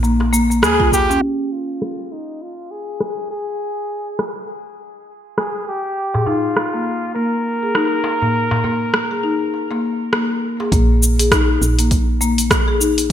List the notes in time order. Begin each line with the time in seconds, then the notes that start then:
Already playing: A#1
0.03 A#3, darbuka ka, cabasa
0.20 cross-stick, darbuka ka
0.33 A#3, cabasa
0.50 A#3, cabasa
0.62 D#2 G#4, cross-stick, cabasa
0.80 F4, kick
0.92 G4, kick, darbuka ka, cabasa
1.09 C#4, darbuka tek, cabasa
1.52 F4
1.82 cross-stick
2.12 D#4
2.42 F4
2.71 G#4
3.00 cross-stick
3.30 G#4
4.19 cross-stick
5.38 G#4, cross-stick
5.68 G4
6.14 G#4, darbuka tek, darbuka dum
6.26 D#4 F4, darbuka ka, darbuka tek, darbuka dum
6.57 cross-stick
6.74 A#3
7.15 A#3 A#4
7.63 G#4
7.75 D#4, cross-stick
8.04 darbuka tek
8.22 A#3, darbuka ka, darbuka dum
8.51 darbuka tek, darbuka dum
8.64 A#3, darbuka ka, darbuka dum
8.94 cross-stick
9.11 G#4
9.23 D#4
9.54 darbuka ka
9.71 A#3, darbuka ka
10.13 A#3, cross-stick
10.60 G#4, darbuka tek
10.72 A#1 A#3, kick, open hi-hat, cabasa
11.03 cabasa
11.19 G#4, open hi-hat, cabasa
11.32 D#4, kick, cross-stick, open hi-hat, cabasa
11.62 A#1, cabasa
11.79 A#3, open hi-hat, cabasa
11.91 kick, open hi-hat, cabasa
12.21 A#3, cabasa
12.38 open hi-hat, cabasa
12.51 kick, cross-stick, open hi-hat, cabasa
12.68 G#4
12.80 D#4, cabasa
12.98 open hi-hat, cabasa